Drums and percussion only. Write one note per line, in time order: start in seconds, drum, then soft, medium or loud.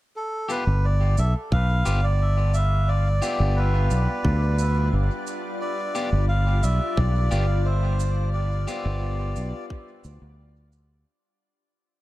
0.50 shaker soft
1.18 shaker soft
1.52 kick medium
1.86 shaker soft
2.54 shaker soft
3.23 shaker soft
3.91 shaker soft
4.25 kick loud
4.59 shaker soft
5.27 shaker soft
5.95 shaker soft
6.63 shaker soft
6.97 kick loud
7.31 shaker medium
8.00 shaker soft
8.68 shaker soft
9.36 shaker soft
9.70 kick loud
10.04 shaker soft
10.72 shaker soft